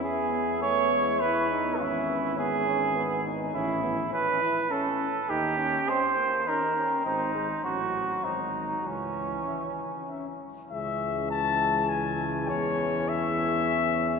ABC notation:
X:1
M:3/4
L:1/8
Q:1/4=102
K:C#m
V:1 name="Trumpet"
e6- | e6 | z2 e2 e2 | z2 d2 d2 |
d2 c2 d2 | z2 e2 e2 | e2 a2 g2 | c2 e4 |]
V:2 name="Flugelhorn"
G2 c2 B2 | E2 G3 z | E2 B2 A2 | =G2 ^B2 ^A2 |
D2 F2 D2 | C4- C z | C6- | C6 |]
V:3 name="French horn"
B,6- | B,6 | z2 C2 C2 | z2 C2 C2 |
^B,2 C2 B,2 | z2 C2 C2 | G,6- | G,6 |]
V:4 name="Trombone"
C B, A, G, E D | C2 B, C B, D | C B, C E C z | D C ^B, ^A, D C |
^B, G, F,4 | E,4- E, z | E,6- | E,6 |]
V:5 name="Tuba" clef=bass
E,,6 | G,,,6 | A,,,2 z4 | D,,2 z4 |
G,,,2 A,,,2 G,,,2 | C,,2 z4 | C,,6 | E,,6 |]